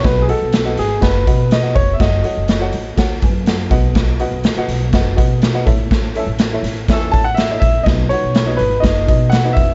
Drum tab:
HH |xxxxxxxx|xxxxxxxx|xxxxxxxx|xxxxxxxx|
SD |o-ooo-o-|o-o-o-o-|o-ooo-o-|o-ooo-o-|
BD |o---oo-o|o---oo-o|o---oo-o|o---oo-o|

HH |xxxxxxxx|
SD |o-o-o-o-|
BD |o---oo-o|